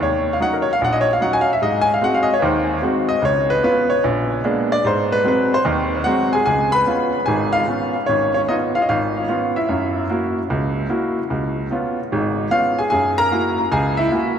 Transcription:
0.00 0.34 D#2 medium
0.00 0.32 C#5 medium
0.33 0.39 F5 medium
0.40 0.68 F#3 medium
0.40 0.68 C#4 soft
0.40 0.68 D#4 medium
0.40 0.54 F#5 medium
0.53 0.66 A#4 medium
0.62 0.70 C#5 medium
0.73 0.79 F5 medium
0.81 1.16 A#1 medium
0.81 0.95 F#5 medium
0.93 1.06 D#5 medium
1.01 1.10 C#5 medium
1.13 1.20 F5 medium
1.21 1.49 F#3 medium
1.21 1.49 C#4 medium
1.21 1.49 D#4 medium
1.21 1.34 F#5 medium
1.33 1.46 G#5 medium
1.41 1.50 F5 medium
1.53 1.60 E5 medium
1.62 1.96 G#2 medium
1.62 1.88 D#5 medium
1.81 1.91 G#5 loud
1.94 2.00 F5 medium
2.01 2.29 G#3 medium
2.01 2.29 C4 soft
2.01 2.30 F#4 medium
2.01 2.15 F#5 medium
2.14 2.27 F5 medium
2.23 2.32 D#5 medium
2.34 2.41 C#5 medium
2.39 2.77 D#2 medium
2.39 2.77 D#3 medium
2.39 2.42 B4 soft
2.45 2.81 C5 medium
2.82 3.10 G#3 medium
2.82 3.10 C4 medium
2.82 3.11 F#4 medium
3.09 3.22 D#5 medium
3.22 3.57 C#2 medium
3.22 3.50 C#5 medium
3.50 3.63 B4 medium
3.63 3.91 B3 medium
3.63 3.91 C#4 soft
3.63 3.92 F4 medium
3.63 3.90 B4 medium
3.90 4.03 C#5 medium
4.04 4.39 A#1 medium
4.44 4.72 G#3 medium
4.44 4.72 A#3 medium
4.44 4.72 B3 soft
4.44 4.72 D4 medium
4.72 4.84 D5 medium
4.84 5.19 G#2 medium
4.84 5.12 C5 medium
5.12 5.25 B4 medium
5.24 5.52 F#3 medium
5.24 5.53 G#3 soft
5.24 5.53 C4 medium
5.24 5.52 B4 medium
5.54 5.61 C5 medium
5.65 6.00 D#2 medium
5.65 6.00 D#3 medium
6.04 6.34 F#3 medium
6.04 6.34 G#3 medium
6.04 6.34 C4 medium
6.04 6.31 F#4 medium
6.04 6.30 F#5 medium
6.33 6.46 G#4 medium
6.33 6.44 G#5 medium
6.46 6.81 C#2 medium
6.46 6.72 G#4 medium
6.46 6.73 G#5 medium
6.72 7.24 B4 medium
6.72 7.28 B5 loud
6.87 7.14 B3 soft
6.87 7.15 C#4 soft
6.87 7.15 F4 medium
7.26 7.62 G#1 medium
7.26 7.62 G#2 medium
7.26 7.52 G#4 medium
7.26 7.51 G#5 medium
7.53 7.67 F4 medium
7.53 7.90 F5 loud
7.68 7.95 B3 medium
7.68 7.96 C#4 soft
7.68 7.96 F4 medium
8.06 8.43 G#1 medium
8.06 8.33 C#4 medium
8.06 8.32 C#5 medium
8.34 8.41 C#4 medium
8.34 8.39 C#5 medium
8.48 8.76 B3 soft
8.48 8.77 C#4 soft
8.48 8.56 D#4 medium
8.48 8.75 F4 medium
8.48 8.54 D#5 medium
8.75 8.84 F4 medium
8.75 8.83 F5 medium
8.82 8.87 D#5 medium
8.89 9.23 G#1 medium
8.89 9.28 F4 medium
8.89 9.52 F5 medium
9.28 9.56 B3 medium
9.28 9.57 C#4 soft
9.28 9.57 F4 medium
9.56 10.06 E4 medium
9.56 10.06 E5 medium
9.69 10.04 F#2 medium
10.10 10.38 A#3 medium
10.10 10.37 E4 medium
10.10 10.38 F#4 medium
10.50 10.85 C#2 medium
10.89 11.18 A#3 medium
10.89 11.18 E4 soft
10.89 11.18 F#4 medium
11.30 11.65 C#2 medium
11.71 11.99 B3 medium
11.71 11.99 C#4 soft
11.71 11.99 F4 medium
12.12 12.46 G#1 medium
12.12 12.46 G#2 medium
12.51 12.79 B3 medium
12.51 12.79 C#4 soft
12.51 12.79 F4 medium
12.51 12.79 F5 medium
12.79 12.90 G#4 medium
12.79 12.89 G#5 medium
12.90 13.27 F#2 medium
12.90 13.16 G#4 medium
12.90 13.18 G#5 medium
13.18 13.69 A#4 medium
13.18 13.73 A#5 loud
13.32 13.60 A#3 soft
13.32 13.60 E4 soft
13.32 13.60 F#4 medium
13.72 14.07 C#2 medium
13.72 13.97 G#4 medium
13.72 14.00 G#5 medium
13.97 14.10 E4 medium
13.97 14.35 E5 medium
14.11 14.39 A#3 soft
14.11 14.39 E4 soft
14.11 14.39 F#4 medium

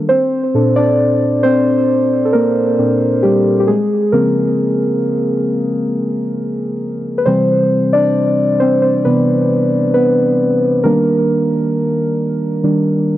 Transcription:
0.00 0.11 D#3 medium
0.00 0.11 G3 soft
0.00 0.12 D4 medium
0.09 0.73 C4 medium
0.09 0.78 C5 loud
0.54 2.77 A#2 medium
0.54 0.77 D4 medium
0.54 2.24 A4 medium
0.76 1.41 D4 medium
0.76 1.46 D5 loud
1.43 2.23 C4 medium
1.43 2.22 C5 loud
2.25 2.33 A4 medium
2.33 3.20 A#3 medium
2.33 3.26 A#4 loud
2.78 3.19 A#2 medium
2.78 3.19 C4 soft
2.78 3.20 D4 medium
3.23 3.59 G3 medium
3.23 3.58 G4 medium
3.60 3.67 G4 medium
3.67 4.10 G#3 medium
3.67 4.09 G#4 loud
4.12 4.72 C#3 medium
4.12 4.73 F3 medium
4.12 6.78 A#3 medium
4.12 4.73 C4 medium
4.12 6.77 A#4 medium
7.18 7.26 B4 medium
7.26 9.04 C3 medium
7.26 9.05 E3 medium
7.26 10.81 G3 medium
7.26 7.90 C4 medium
7.26 7.89 C5 loud
7.93 8.57 D4 medium
7.93 8.62 D5 loud
8.60 8.82 C4 medium
8.60 8.81 C5 loud
8.82 9.04 C4 medium
8.82 9.03 C5 medium
9.05 9.46 C3 soft
9.05 9.46 E3 soft
9.05 9.92 B3 medium
9.05 9.91 B4 medium
9.94 10.81 B3 medium
9.94 10.87 B4 medium
10.83 11.44 D#3 medium
10.83 11.44 G3 medium
10.83 13.17 A#3 medium
10.83 11.44 D4 medium
10.83 13.17 A#4 medium
12.63 13.04 D#3 medium
12.63 13.04 G3 soft
12.63 13.05 D4 medium

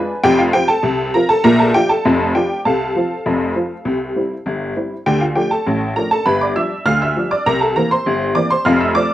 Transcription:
0.00 0.10 G#3 medium
0.00 0.11 D4 medium
0.00 0.11 F4 medium
0.00 0.21 B4 medium
0.00 0.21 G#5 medium
0.23 0.49 F1 medium
0.23 0.49 F2 loud
0.23 0.38 G4 loud
0.23 0.39 G5 loud
0.38 0.52 F4 medium
0.38 0.54 F5 medium
0.53 0.70 F3 medium
0.53 0.70 C4 medium
0.53 0.70 F4 medium
0.53 0.68 G4 medium
0.53 0.69 G5 loud
0.68 1.11 A4 medium
0.68 1.11 A5 loud
0.83 1.09 C2 loud
0.83 1.09 C3 loud
1.14 1.31 F3 medium
1.14 1.31 C4 medium
1.14 1.32 F4 medium
1.14 1.29 A#4 medium
1.14 1.29 A#5 loud
1.29 1.44 A4 medium
1.29 1.44 A5 loud
1.44 1.70 A#1 loud
1.44 1.70 A#2 loud
1.44 1.59 A#4 loud
1.44 1.59 A#5 loud
1.59 1.74 A4 medium
1.59 1.74 A5 medium
1.74 1.91 F3 medium
1.74 1.91 D4 medium
1.74 1.92 F4 medium
1.74 1.89 G4 medium
1.74 1.89 G5 loud
1.89 2.32 A4 medium
1.89 2.25 A5 medium
2.05 2.31 F1 loud
2.05 2.30 F2 loud
2.35 2.51 F3 medium
2.35 2.52 D4 medium
2.35 2.52 F4 medium
2.35 2.64 G4 medium
2.35 2.59 G5 medium
2.65 2.91 C2 medium
2.65 2.91 C3 medium
2.65 4.42 A4 medium
2.65 4.43 F5 medium
2.65 4.42 A5 medium
2.96 3.12 F3 medium
2.96 3.13 C4 medium
2.96 3.13 F4 medium
3.26 3.51 F1 medium
3.26 3.51 F2 medium
3.56 3.72 F3 soft
3.56 3.72 C4 soft
3.56 3.73 F4 soft
3.85 4.11 C2 medium
3.85 4.11 C3 medium
4.16 4.32 G3 medium
4.16 4.33 C4 soft
4.16 4.33 E4 soft
4.46 4.71 G1 medium
4.46 4.71 G2 medium
4.76 4.93 G3 soft
4.76 4.93 C4 soft
4.76 4.93 E4 soft
5.06 5.32 D2 medium
5.06 5.32 D3 loud
5.06 5.21 G4 medium
5.06 5.21 G5 medium
5.20 5.35 F4 medium
5.20 5.36 F5 medium
5.35 5.52 F3 medium
5.35 5.52 A3 medium
5.35 5.53 D4 medium
5.35 5.50 G4 medium
5.35 5.51 G5 medium
5.51 5.94 A4 medium
5.51 5.94 A5 medium
5.66 5.92 A1 medium
5.66 5.92 A2 medium
5.96 6.13 F3 soft
5.96 6.13 A3 soft
5.96 6.14 D4 medium
5.96 6.11 A#4 medium
5.96 6.11 A#5 medium
6.11 6.26 A4 medium
6.11 6.26 A5 loud
6.25 6.51 G1 medium
6.25 6.52 G2 medium
6.25 6.40 B4 medium
6.25 6.41 B5 loud
6.41 6.56 D5 medium
6.41 6.56 D6 medium
6.56 6.73 F3 soft
6.56 6.73 G3 medium
6.56 6.73 D4 medium
6.56 6.84 E5 medium
6.56 6.85 E6 medium
6.86 7.11 D2 medium
6.86 7.11 D3 medium
6.86 7.00 F5 medium
6.86 7.01 F6 loud
7.02 7.30 E5 medium
7.02 7.25 E6 medium
7.17 7.33 F3 medium
7.17 7.33 G3 soft
7.17 7.34 D4 medium
7.31 7.46 D5 medium
7.31 7.46 D6 medium
7.46 7.72 C2 loud
7.46 7.72 C3 loud
7.46 7.60 A#4 medium
7.46 7.61 A#5 loud
7.61 7.76 A4 medium
7.61 7.76 A5 medium
7.76 7.93 E3 medium
7.76 7.93 A#3 medium
7.76 7.93 C4 medium
7.76 7.90 A#4 medium
7.76 7.91 A#5 loud
7.91 8.33 C5 medium
7.91 8.27 C6 medium
8.06 8.31 G1 medium
8.06 8.31 G2 medium
8.35 8.52 E3 medium
8.35 8.52 A#3 medium
8.35 8.53 C4 medium
8.35 8.50 D5 medium
8.35 8.50 D6 loud
8.51 8.65 C5 medium
8.51 8.65 C6 loud
8.65 8.91 F1 loud
8.65 8.91 F2 loud
8.65 8.80 F5 medium
8.65 8.80 F6 loud
8.81 8.95 E5 medium
8.81 8.95 E6 medium
8.95 9.12 F3 medium
8.95 9.12 A3 medium
8.95 9.12 C4 medium
8.95 9.14 D5 medium
8.95 9.14 D6 loud

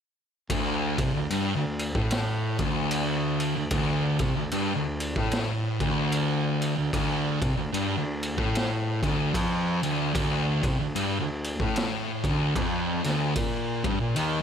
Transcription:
0.50 0.95 D2 medium
0.50 0.97 D2 loud
0.50 kick loud
0.50 ride loud
0.98 1.13 C2 medium
0.98 1.14 C3 loud
0.98 kick loud
0.98 ride medium
1.14 1.29 D2 medium
1.14 1.30 D2 medium
1.30 1.53 G2 medium
1.30 1.53 G2 loud
1.30 ride medium
1.55 1.92 D2 medium
1.55 1.89 D2 medium
1.79 ride medium
1.95 2.55 A2 medium
1.95 2.58 A2 loud
1.95 kick loud
2.11 snare loud
2.11 ride loud
2.59 3.51 D2 medium
2.59 3.55 D2 loud
2.59 kick loud
2.59 ride medium
2.91 ride loud
3.40 ride medium
3.56 3.71 D2 medium
3.56 3.70 D2 medium
3.71 4.16 D2 loud
3.71 4.19 D2 loud
3.71 kick loud
3.71 ride medium
4.19 4.34 C2 medium
4.19 4.35 C3 loud
4.19 kick loud
4.19 ride medium
4.35 4.50 D2 medium
4.35 4.52 D2 medium
4.51 4.74 G2 medium
4.51 4.75 G2 loud
4.51 ride medium
4.76 5.13 D2 medium
4.76 5.10 D2 medium
5.00 ride medium
5.16 5.46 A2 loud
5.16 5.79 A2 medium
5.16 kick loud
5.31 snare loud
5.31 ride medium
5.80 6.73 D2 loud
5.80 6.76 D2 loud
5.80 kick loud
5.80 ride medium
6.12 ride medium
6.62 ride medium
6.77 6.92 D2 medium
6.93 7.40 D2 loud
6.93 7.38 D2 loud
6.93 kick loud
6.93 ride medium
7.41 7.56 C2 loud
7.41 7.56 C3 loud
7.41 kick loud
7.41 ride medium
7.57 7.72 D2 medium
7.57 7.73 D2 medium
7.73 7.96 G2 medium
7.73 7.96 G2 loud
7.73 ride medium
7.97 8.35 D2 medium
7.97 8.31 D2 medium
8.23 ride medium
8.38 9.01 A2 medium
8.38 8.98 A2 loud
8.38 kick loud
8.55 snare loud
8.55 ride medium
9.02 9.33 D2 loud
9.02 9.32 D2 medium
9.02 kick loud
9.02 ride medium
9.34 9.81 F2 loud
9.34 9.79 F2 loud
9.34 kick loud
9.34 ride loud
9.82 10.13 D2 loud
9.82 10.12 D2 medium
9.82 ride medium
10.14 10.60 D2 medium
10.14 10.62 D2 loud
10.14 kick loud
10.14 ride loud
10.63 10.78 C2 loud
10.63 10.78 C3 loud
10.63 kick loud
10.63 ride medium
10.79 10.94 D2 medium
10.79 10.95 D2 medium
10.95 11.17 G2 loud
10.95 11.18 G2 loud
10.95 ride medium
11.19 11.57 D2 medium
11.19 11.53 D2 medium
11.44 ride medium
11.60 11.89 A2 medium
11.60 12.23 A2 medium
11.60 kick loud
11.76 snare loud
11.76 ride medium
12.24 12.53 D2 medium
12.24 12.55 D2 medium
12.24 kick loud
12.24 ride medium
12.56 13.01 F2 medium
12.56 13.03 F2 loud
12.56 kick loud
12.56 ride medium
13.04 13.34 D2 medium
13.04 13.35 D2 loud
13.04 snare soft
13.04 ride medium
13.36 13.83 A#2 loud
13.36 13.81 A#2 medium
13.36 kick loud
13.36 ride medium
13.84 13.99 G2 loud
13.84 13.99 G2 medium
13.84 kick loud
13.84 ride medium
14.00 14.16 A#2 medium
14.00 14.15 A#2 medium
14.16 14.39 D#2 medium
14.16 14.39 D#3 loud
14.16 ride medium

